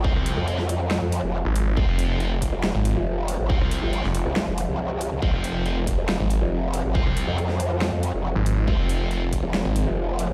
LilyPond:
<<
  \new Staff \with { instrumentName = "Distorted electric guitar" } { \time 4/4 \key f \minor \tempo 4 = 139 <c' f' c''>4 <c' f' c''>8 r2 r8 | <c' f' c''>4 <c' f' c''>8 r2 r8 | <c' f' c''>4 <c' f' c''>8 r2 r8 | <c' f' c''>4 <c' f' c''>8 r2 r8 |
<c' f' c''>4 r2. | <c' f' c''>4 <c' f' c''>8 r2 r8 | }
  \new Staff \with { instrumentName = "Analog synth pad" } { \time 4/4 \key f \minor << { f'1~ | f'1~ | f'1 | bes'1~ |
bes'1~ | bes'1 | } \\ { <f c'>1~ | <f c'>1~ | <f c'>1~ | <f c'>1~ |
<f c'>1~ | <f c'>1 | } >> }
  \new Staff \with { instrumentName = "Detuned saw bass" } { \clef bass \time 4/4 \key f \minor r16 c,8 r2 r8 aes,,8. | r16 f,,4. r8 aes,,8 r4 r16 | r16 c,8 r8 f,,8 r2 r16 | r16 f,,4. r8 aes,,8 r4 r16 |
r16 c,8 r2 r8 aes,,8. | r16 f,,4. r8 aes,,8 r4 r16 | }
  \new Staff \with { instrumentName = "Wobble bass" } { \clef bass \time 4/4 \key f \minor aes,,16 r8 f,4. f,8 f,,8 r8. | f,,16 r4. f,,8 r8 f,,4 aes,,16~ | aes,,16 r8 g,,8 r8 c,8 f,,8 c,4 c,16 | f,,16 r4. f,,8 r8 f,,4 aes,,16~ |
aes,,16 r8 f,4. f,8 f,,8 r8. | f,,16 r4. f,,8 r8 f,,4 aes,,16 | }
  \new DrumStaff \with { instrumentName = "Drums" } \drummode { \time 4/4 bd8 hh8 hh16 sn16 hh8 sn8 hh8 r8 hh8 | bd8 hh8 hh8 <hh bd>8 sn8 hh8 r8 hh8 | bd8 hh8 hh16 sn16 hh8 sn8 hh8 r8 hh8 | bd8 hh8 hh8 <hh bd>8 sn8 hh8 r8 hh8 |
bd8 hh8 hh16 sn16 hh8 sn8 hh8 r8 hh8 | bd8 hh8 hh8 <hh bd>8 sn8 hh8 r8 hh8 | }
>>